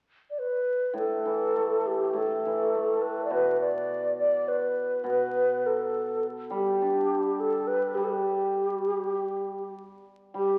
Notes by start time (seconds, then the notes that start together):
0.30 D5
0.39 B4
0.93 A2 A4
1.25 E3
1.56 A3
1.87 G4
2.13 A2 A4
2.46 E3
2.75 A3
3.02 B4
3.25 D5
3.30 B2 B4
3.61 D5
4.19 D5
4.48 B4
5.04 B2 B4
5.66 A4
6.50 G3
6.55 G4
6.82 D4
7.40 A4
7.67 B4
7.95 G3 G4
8.04 A4
8.09 G4
10.34 G3 G4